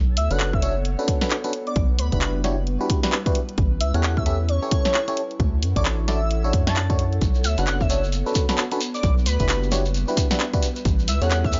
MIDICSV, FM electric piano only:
0, 0, Header, 1, 2, 480
1, 0, Start_track
1, 0, Tempo, 454545
1, 1861, Time_signature, 4, 2, 24, 8
1, 12249, End_track
2, 0, Start_track
2, 0, Title_t, "FM electric piano"
2, 0, Program_c, 0, 5
2, 324, Note_on_c, 0, 61, 79
2, 324, Note_on_c, 0, 62, 73
2, 324, Note_on_c, 0, 66, 75
2, 324, Note_on_c, 0, 69, 73
2, 324, Note_on_c, 0, 71, 89
2, 637, Note_off_c, 0, 61, 0
2, 637, Note_off_c, 0, 62, 0
2, 637, Note_off_c, 0, 66, 0
2, 637, Note_off_c, 0, 69, 0
2, 637, Note_off_c, 0, 71, 0
2, 659, Note_on_c, 0, 73, 107
2, 660, Note_on_c, 0, 61, 97
2, 660, Note_on_c, 0, 62, 90
2, 660, Note_on_c, 0, 66, 89
2, 660, Note_on_c, 0, 69, 87
2, 783, Note_off_c, 0, 61, 0
2, 783, Note_off_c, 0, 62, 0
2, 783, Note_off_c, 0, 66, 0
2, 783, Note_off_c, 0, 69, 0
2, 783, Note_off_c, 0, 73, 0
2, 1044, Note_on_c, 0, 61, 90
2, 1044, Note_on_c, 0, 62, 84
2, 1044, Note_on_c, 0, 66, 85
2, 1044, Note_on_c, 0, 69, 86
2, 1044, Note_on_c, 0, 71, 102
2, 1250, Note_off_c, 0, 61, 0
2, 1250, Note_off_c, 0, 62, 0
2, 1250, Note_off_c, 0, 66, 0
2, 1250, Note_off_c, 0, 69, 0
2, 1250, Note_off_c, 0, 71, 0
2, 1285, Note_on_c, 0, 61, 95
2, 1285, Note_on_c, 0, 71, 100
2, 1286, Note_on_c, 0, 62, 87
2, 1286, Note_on_c, 0, 66, 88
2, 1286, Note_on_c, 0, 69, 88
2, 1433, Note_off_c, 0, 61, 0
2, 1433, Note_off_c, 0, 62, 0
2, 1433, Note_off_c, 0, 66, 0
2, 1433, Note_off_c, 0, 69, 0
2, 1433, Note_off_c, 0, 71, 0
2, 1525, Note_on_c, 0, 61, 95
2, 1525, Note_on_c, 0, 69, 87
2, 1525, Note_on_c, 0, 71, 102
2, 1526, Note_on_c, 0, 62, 86
2, 1526, Note_on_c, 0, 66, 89
2, 1609, Note_off_c, 0, 61, 0
2, 1609, Note_off_c, 0, 62, 0
2, 1609, Note_off_c, 0, 66, 0
2, 1609, Note_off_c, 0, 69, 0
2, 1609, Note_off_c, 0, 71, 0
2, 2245, Note_on_c, 0, 62, 81
2, 2245, Note_on_c, 0, 64, 76
2, 2245, Note_on_c, 0, 66, 77
2, 2245, Note_on_c, 0, 67, 73
2, 2245, Note_on_c, 0, 71, 89
2, 2558, Note_off_c, 0, 62, 0
2, 2558, Note_off_c, 0, 64, 0
2, 2558, Note_off_c, 0, 66, 0
2, 2558, Note_off_c, 0, 67, 0
2, 2558, Note_off_c, 0, 71, 0
2, 2579, Note_on_c, 0, 62, 97
2, 2579, Note_on_c, 0, 64, 90
2, 2579, Note_on_c, 0, 66, 88
2, 2580, Note_on_c, 0, 67, 88
2, 2580, Note_on_c, 0, 73, 102
2, 2702, Note_off_c, 0, 62, 0
2, 2703, Note_off_c, 0, 64, 0
2, 2703, Note_off_c, 0, 66, 0
2, 2703, Note_off_c, 0, 67, 0
2, 2703, Note_off_c, 0, 73, 0
2, 2964, Note_on_c, 0, 62, 92
2, 2964, Note_on_c, 0, 64, 86
2, 2964, Note_on_c, 0, 66, 85
2, 2964, Note_on_c, 0, 67, 83
2, 2964, Note_on_c, 0, 71, 101
2, 3170, Note_off_c, 0, 62, 0
2, 3170, Note_off_c, 0, 64, 0
2, 3170, Note_off_c, 0, 66, 0
2, 3170, Note_off_c, 0, 67, 0
2, 3170, Note_off_c, 0, 71, 0
2, 3203, Note_on_c, 0, 62, 94
2, 3203, Note_on_c, 0, 66, 84
2, 3203, Note_on_c, 0, 71, 106
2, 3204, Note_on_c, 0, 64, 85
2, 3204, Note_on_c, 0, 67, 86
2, 3352, Note_off_c, 0, 62, 0
2, 3352, Note_off_c, 0, 64, 0
2, 3352, Note_off_c, 0, 66, 0
2, 3352, Note_off_c, 0, 67, 0
2, 3352, Note_off_c, 0, 71, 0
2, 3444, Note_on_c, 0, 62, 91
2, 3444, Note_on_c, 0, 64, 87
2, 3444, Note_on_c, 0, 66, 90
2, 3444, Note_on_c, 0, 67, 89
2, 3444, Note_on_c, 0, 71, 105
2, 3592, Note_off_c, 0, 62, 0
2, 3592, Note_off_c, 0, 64, 0
2, 3592, Note_off_c, 0, 66, 0
2, 3592, Note_off_c, 0, 67, 0
2, 3592, Note_off_c, 0, 71, 0
2, 4165, Note_on_c, 0, 61, 81
2, 4165, Note_on_c, 0, 64, 74
2, 4165, Note_on_c, 0, 69, 77
2, 4165, Note_on_c, 0, 73, 92
2, 4166, Note_on_c, 0, 67, 75
2, 4477, Note_off_c, 0, 69, 0
2, 4478, Note_off_c, 0, 61, 0
2, 4478, Note_off_c, 0, 64, 0
2, 4478, Note_off_c, 0, 67, 0
2, 4478, Note_off_c, 0, 73, 0
2, 4500, Note_on_c, 0, 61, 98
2, 4500, Note_on_c, 0, 64, 88
2, 4500, Note_on_c, 0, 67, 90
2, 4500, Note_on_c, 0, 69, 89
2, 4501, Note_on_c, 0, 76, 105
2, 4623, Note_off_c, 0, 61, 0
2, 4623, Note_off_c, 0, 64, 0
2, 4623, Note_off_c, 0, 67, 0
2, 4623, Note_off_c, 0, 69, 0
2, 4623, Note_off_c, 0, 76, 0
2, 4884, Note_on_c, 0, 61, 95
2, 4884, Note_on_c, 0, 67, 86
2, 4884, Note_on_c, 0, 69, 86
2, 4884, Note_on_c, 0, 73, 105
2, 4885, Note_on_c, 0, 64, 85
2, 5090, Note_off_c, 0, 61, 0
2, 5090, Note_off_c, 0, 64, 0
2, 5090, Note_off_c, 0, 67, 0
2, 5090, Note_off_c, 0, 69, 0
2, 5090, Note_off_c, 0, 73, 0
2, 5124, Note_on_c, 0, 67, 88
2, 5125, Note_on_c, 0, 61, 99
2, 5125, Note_on_c, 0, 64, 89
2, 5125, Note_on_c, 0, 69, 86
2, 5125, Note_on_c, 0, 73, 108
2, 5272, Note_off_c, 0, 61, 0
2, 5272, Note_off_c, 0, 64, 0
2, 5272, Note_off_c, 0, 67, 0
2, 5272, Note_off_c, 0, 69, 0
2, 5272, Note_off_c, 0, 73, 0
2, 5364, Note_on_c, 0, 61, 97
2, 5365, Note_on_c, 0, 64, 88
2, 5365, Note_on_c, 0, 67, 87
2, 5365, Note_on_c, 0, 69, 87
2, 5365, Note_on_c, 0, 73, 104
2, 5512, Note_off_c, 0, 61, 0
2, 5512, Note_off_c, 0, 64, 0
2, 5512, Note_off_c, 0, 67, 0
2, 5512, Note_off_c, 0, 69, 0
2, 5512, Note_off_c, 0, 73, 0
2, 6084, Note_on_c, 0, 64, 76
2, 6084, Note_on_c, 0, 69, 75
2, 6085, Note_on_c, 0, 62, 83
2, 6085, Note_on_c, 0, 66, 75
2, 6085, Note_on_c, 0, 73, 92
2, 6397, Note_off_c, 0, 62, 0
2, 6397, Note_off_c, 0, 64, 0
2, 6397, Note_off_c, 0, 66, 0
2, 6397, Note_off_c, 0, 69, 0
2, 6397, Note_off_c, 0, 73, 0
2, 6419, Note_on_c, 0, 62, 95
2, 6419, Note_on_c, 0, 64, 88
2, 6419, Note_on_c, 0, 66, 91
2, 6419, Note_on_c, 0, 69, 87
2, 6419, Note_on_c, 0, 74, 107
2, 6543, Note_off_c, 0, 62, 0
2, 6543, Note_off_c, 0, 64, 0
2, 6543, Note_off_c, 0, 66, 0
2, 6543, Note_off_c, 0, 69, 0
2, 6543, Note_off_c, 0, 74, 0
2, 6803, Note_on_c, 0, 62, 92
2, 6803, Note_on_c, 0, 66, 87
2, 6804, Note_on_c, 0, 64, 86
2, 6804, Note_on_c, 0, 69, 85
2, 6804, Note_on_c, 0, 73, 101
2, 7010, Note_off_c, 0, 62, 0
2, 7010, Note_off_c, 0, 64, 0
2, 7010, Note_off_c, 0, 66, 0
2, 7010, Note_off_c, 0, 69, 0
2, 7010, Note_off_c, 0, 73, 0
2, 7044, Note_on_c, 0, 62, 94
2, 7044, Note_on_c, 0, 64, 85
2, 7044, Note_on_c, 0, 66, 87
2, 7044, Note_on_c, 0, 69, 84
2, 7045, Note_on_c, 0, 73, 104
2, 7192, Note_off_c, 0, 62, 0
2, 7192, Note_off_c, 0, 64, 0
2, 7192, Note_off_c, 0, 66, 0
2, 7192, Note_off_c, 0, 69, 0
2, 7192, Note_off_c, 0, 73, 0
2, 7284, Note_on_c, 0, 62, 95
2, 7284, Note_on_c, 0, 64, 88
2, 7284, Note_on_c, 0, 66, 87
2, 7284, Note_on_c, 0, 69, 86
2, 7284, Note_on_c, 0, 73, 103
2, 7432, Note_off_c, 0, 62, 0
2, 7432, Note_off_c, 0, 64, 0
2, 7432, Note_off_c, 0, 66, 0
2, 7432, Note_off_c, 0, 69, 0
2, 7432, Note_off_c, 0, 73, 0
2, 8005, Note_on_c, 0, 61, 80
2, 8005, Note_on_c, 0, 62, 78
2, 8005, Note_on_c, 0, 66, 75
2, 8005, Note_on_c, 0, 69, 73
2, 8005, Note_on_c, 0, 71, 91
2, 8317, Note_off_c, 0, 62, 0
2, 8318, Note_off_c, 0, 61, 0
2, 8318, Note_off_c, 0, 66, 0
2, 8318, Note_off_c, 0, 69, 0
2, 8318, Note_off_c, 0, 71, 0
2, 8340, Note_on_c, 0, 62, 88
2, 8340, Note_on_c, 0, 66, 86
2, 8340, Note_on_c, 0, 69, 86
2, 8341, Note_on_c, 0, 61, 97
2, 8341, Note_on_c, 0, 73, 104
2, 8463, Note_off_c, 0, 61, 0
2, 8463, Note_off_c, 0, 62, 0
2, 8463, Note_off_c, 0, 66, 0
2, 8463, Note_off_c, 0, 69, 0
2, 8463, Note_off_c, 0, 73, 0
2, 8725, Note_on_c, 0, 66, 84
2, 8726, Note_on_c, 0, 61, 94
2, 8726, Note_on_c, 0, 62, 86
2, 8726, Note_on_c, 0, 69, 86
2, 8726, Note_on_c, 0, 71, 104
2, 8930, Note_off_c, 0, 66, 0
2, 8931, Note_off_c, 0, 61, 0
2, 8931, Note_off_c, 0, 62, 0
2, 8931, Note_off_c, 0, 69, 0
2, 8931, Note_off_c, 0, 71, 0
2, 8965, Note_on_c, 0, 66, 89
2, 8966, Note_on_c, 0, 61, 96
2, 8966, Note_on_c, 0, 62, 86
2, 8966, Note_on_c, 0, 69, 85
2, 8966, Note_on_c, 0, 71, 107
2, 9113, Note_off_c, 0, 61, 0
2, 9113, Note_off_c, 0, 62, 0
2, 9113, Note_off_c, 0, 66, 0
2, 9113, Note_off_c, 0, 69, 0
2, 9113, Note_off_c, 0, 71, 0
2, 9207, Note_on_c, 0, 61, 96
2, 9207, Note_on_c, 0, 62, 88
2, 9207, Note_on_c, 0, 66, 89
2, 9207, Note_on_c, 0, 69, 87
2, 9207, Note_on_c, 0, 71, 103
2, 9290, Note_off_c, 0, 61, 0
2, 9290, Note_off_c, 0, 62, 0
2, 9290, Note_off_c, 0, 66, 0
2, 9290, Note_off_c, 0, 69, 0
2, 9290, Note_off_c, 0, 71, 0
2, 9928, Note_on_c, 0, 62, 83
2, 9928, Note_on_c, 0, 64, 76
2, 9928, Note_on_c, 0, 66, 73
2, 9928, Note_on_c, 0, 67, 75
2, 9928, Note_on_c, 0, 71, 91
2, 10239, Note_off_c, 0, 62, 0
2, 10239, Note_off_c, 0, 64, 0
2, 10239, Note_off_c, 0, 66, 0
2, 10239, Note_off_c, 0, 67, 0
2, 10239, Note_off_c, 0, 71, 0
2, 10261, Note_on_c, 0, 66, 90
2, 10261, Note_on_c, 0, 67, 88
2, 10262, Note_on_c, 0, 62, 96
2, 10262, Note_on_c, 0, 64, 87
2, 10262, Note_on_c, 0, 73, 103
2, 10384, Note_off_c, 0, 62, 0
2, 10384, Note_off_c, 0, 64, 0
2, 10384, Note_off_c, 0, 66, 0
2, 10384, Note_off_c, 0, 67, 0
2, 10384, Note_off_c, 0, 73, 0
2, 10646, Note_on_c, 0, 62, 93
2, 10646, Note_on_c, 0, 64, 87
2, 10646, Note_on_c, 0, 66, 86
2, 10646, Note_on_c, 0, 67, 87
2, 10646, Note_on_c, 0, 71, 106
2, 10851, Note_off_c, 0, 62, 0
2, 10851, Note_off_c, 0, 64, 0
2, 10851, Note_off_c, 0, 66, 0
2, 10851, Note_off_c, 0, 67, 0
2, 10851, Note_off_c, 0, 71, 0
2, 10885, Note_on_c, 0, 64, 88
2, 10885, Note_on_c, 0, 66, 88
2, 10885, Note_on_c, 0, 67, 89
2, 10886, Note_on_c, 0, 62, 97
2, 10886, Note_on_c, 0, 71, 105
2, 11033, Note_off_c, 0, 62, 0
2, 11033, Note_off_c, 0, 64, 0
2, 11033, Note_off_c, 0, 66, 0
2, 11033, Note_off_c, 0, 67, 0
2, 11033, Note_off_c, 0, 71, 0
2, 11125, Note_on_c, 0, 64, 88
2, 11125, Note_on_c, 0, 67, 86
2, 11125, Note_on_c, 0, 71, 106
2, 11126, Note_on_c, 0, 62, 96
2, 11126, Note_on_c, 0, 66, 88
2, 11272, Note_off_c, 0, 67, 0
2, 11273, Note_off_c, 0, 62, 0
2, 11273, Note_off_c, 0, 64, 0
2, 11273, Note_off_c, 0, 66, 0
2, 11273, Note_off_c, 0, 71, 0
2, 11845, Note_on_c, 0, 61, 82
2, 11845, Note_on_c, 0, 64, 76
2, 11846, Note_on_c, 0, 67, 77
2, 11846, Note_on_c, 0, 69, 77
2, 11846, Note_on_c, 0, 73, 94
2, 12158, Note_off_c, 0, 61, 0
2, 12158, Note_off_c, 0, 64, 0
2, 12158, Note_off_c, 0, 67, 0
2, 12158, Note_off_c, 0, 69, 0
2, 12158, Note_off_c, 0, 73, 0
2, 12179, Note_on_c, 0, 61, 96
2, 12180, Note_on_c, 0, 64, 92
2, 12180, Note_on_c, 0, 67, 89
2, 12180, Note_on_c, 0, 69, 88
2, 12180, Note_on_c, 0, 76, 109
2, 12249, Note_off_c, 0, 61, 0
2, 12249, Note_off_c, 0, 64, 0
2, 12249, Note_off_c, 0, 67, 0
2, 12249, Note_off_c, 0, 69, 0
2, 12249, Note_off_c, 0, 76, 0
2, 12249, End_track
0, 0, End_of_file